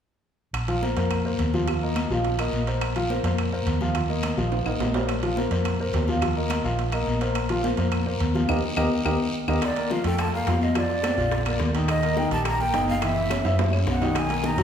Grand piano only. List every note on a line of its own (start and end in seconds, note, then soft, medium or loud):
0.68 0.80 F3 medium
0.68 0.80 F4 medium
0.68 0.80 F5 medium
0.82 0.94 A#3 medium
0.82 0.94 A#4 medium
0.82 0.95 C5 medium
0.97 1.20 A#3 medium
0.97 1.20 A#4 medium
0.97 1.20 C5 medium
1.25 1.48 A#3 medium
1.25 1.49 A#4 medium
1.25 1.49 C5 medium
1.54 1.65 F3 medium
1.54 1.66 F4 medium
1.54 1.66 F5 medium
1.68 1.80 F3 medium
1.68 1.80 F4 medium
1.68 1.80 F5 medium
1.83 2.06 A#3 medium
1.83 2.06 A#4 medium
1.83 2.06 D#5 medium
2.11 2.34 F3 medium
2.11 2.34 F4 medium
2.11 2.34 F5 medium
2.39 2.62 A#3 medium
2.39 2.62 A#4 medium
2.39 2.63 D#5 medium
2.67 2.90 A#3 medium
2.67 2.91 A#4 medium
2.67 2.91 C5 medium
2.96 3.08 F3 medium
2.96 3.08 F4 medium
2.96 3.08 F5 medium
3.10 3.22 A#3 medium
3.10 3.22 A#4 medium
3.10 3.22 C5 medium
3.25 3.48 A#3 medium
3.25 3.48 A#4 medium
3.25 3.48 C5 medium
3.53 3.76 A#3 medium
3.53 3.76 A#4 medium
3.53 3.76 C5 medium
3.81 3.93 F3 medium
3.81 3.93 F4 medium
3.81 3.93 F5 medium
3.95 4.07 F3 medium
3.95 4.07 F4 medium
3.95 4.07 F5 medium
4.09 4.32 A#3 medium
4.09 4.32 A#4 medium
4.09 4.33 D#5 medium
4.37 4.61 F3 medium
4.37 4.61 F4 medium
4.37 4.61 F5 medium
4.67 4.90 A#3 medium
4.67 4.90 A#4 medium
4.67 4.90 D#5 medium
4.94 5.18 A#3 medium
4.94 5.18 A#4 medium
4.94 5.18 C5 medium
5.23 5.34 F3 medium
5.23 5.35 F4 medium
5.23 5.35 F5 medium
5.37 5.49 A#3 medium
5.37 5.49 A#4 medium
5.37 5.49 C5 medium
5.51 5.74 A#3 medium
5.51 5.75 A#4 medium
5.51 5.75 C5 medium
5.80 6.03 A#3 medium
5.80 6.03 A#4 medium
5.80 6.03 C5 medium
6.09 6.20 F3 medium
6.09 6.20 F4 medium
6.09 6.20 F5 medium
6.22 6.34 F3 medium
6.22 6.34 F4 medium
6.22 6.34 F5 medium
6.36 6.60 A#3 medium
6.36 6.60 A#4 medium
6.36 6.60 D#5 medium
6.65 6.88 F3 medium
6.65 6.88 F4 medium
6.65 6.88 F5 medium
6.93 7.16 A#3 medium
6.93 7.16 A#4 medium
6.93 7.16 D#5 medium
7.21 7.44 A#3 medium
7.21 7.45 A#4 medium
7.21 7.45 C5 medium
7.50 7.61 F3 medium
7.50 7.62 F4 medium
7.50 7.62 F5 medium
7.63 7.75 A#3 medium
7.63 7.75 A#4 medium
7.63 7.75 C5 medium
7.77 8.01 A#3 medium
7.77 8.01 A#4 medium
7.77 8.02 C5 medium
8.06 8.29 A#3 medium
8.06 8.30 A#4 medium
8.06 8.30 C5 medium
8.35 8.46 F3 medium
8.35 8.47 F4 medium
8.35 8.47 F5 medium
8.49 8.58 G4 medium
8.49 8.58 A#4 medium
8.49 8.58 D#5 medium
8.77 8.86 G4 medium
8.77 8.86 A#4 medium
8.77 8.86 D#5 medium
9.05 9.14 G4 medium
9.05 9.14 A#4 medium
9.05 9.15 D#5 medium
9.48 9.58 G4 medium
9.48 9.57 A#4 medium
9.48 9.57 D#5 medium
9.77 9.88 A#3 medium
9.77 9.89 A#4 medium
9.91 10.02 F3 medium
9.91 10.03 F4 medium
10.05 10.28 A3 medium
10.05 10.28 A4 medium
10.34 10.45 A#3 medium
10.34 10.45 A#4 medium
10.48 10.71 F4 medium
10.48 10.71 F5 medium
10.76 10.99 F3 medium
10.76 10.99 F4 medium
11.04 11.16 C4 medium
11.04 11.16 C5 medium
11.18 11.41 F4 medium
11.18 11.41 F5 medium
11.47 11.70 A#3 medium
11.47 11.70 A#4 medium
11.75 11.98 D#3 medium
11.75 11.98 D#4 medium
12.03 12.15 A#3 medium
12.03 12.15 A#4 medium
12.17 12.29 D#3 medium
12.17 12.29 D#4 medium
12.32 12.55 G3 medium
12.32 12.55 G4 medium
12.59 12.71 A#3 medium
12.59 12.71 A#4 medium
12.74 12.97 D#4 medium
12.74 12.97 D#5 medium
13.02 13.25 E3 medium
13.02 13.26 E4 medium
13.31 13.42 C#4 medium
13.31 13.42 C#5 medium
13.44 13.68 E4 medium
13.44 13.68 E5 medium
13.73 13.96 C#4 medium
13.73 13.96 C#5 medium
14.01 14.24 D#3 medium
14.01 14.25 D#4 medium
14.30 14.41 A#3 medium
14.30 14.41 A#4 medium
14.44 14.56 D#3 medium
14.44 14.56 D#4 medium
14.58 14.63 F#3 medium
14.58 14.63 F#4 medium